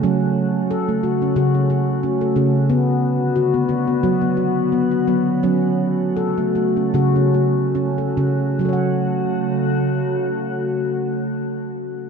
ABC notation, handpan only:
X:1
M:4/4
L:1/16
Q:"Swing 16ths" 1/4=83
K:F#m
V:1 name="Handpan"
C2 z2 A A, F C F C F2 C A C2 | z4 F B, F B, F B, F2 B, F B,2 | C2 z2 A A, F C F C F2 C A C2 | z16 |]
V:2 name="Handpan" clef=bass
F,8 C,6 C,2 | B,8 F,6 F,2 | F,8 C,6 C,2 | [F,FAcf]16 |]